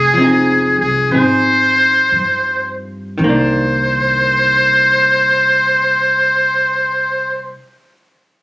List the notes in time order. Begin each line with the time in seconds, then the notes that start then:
Already playing: F1 G#4
0.13 F3
0.18 C4 D#4
0.24 G#4
0.78 C2 G#4
1.11 G#1 C4 D#4 G#4 C5
2.12 G2
3.18 C2 D#3
3.23 A#3 C5
3.29 D4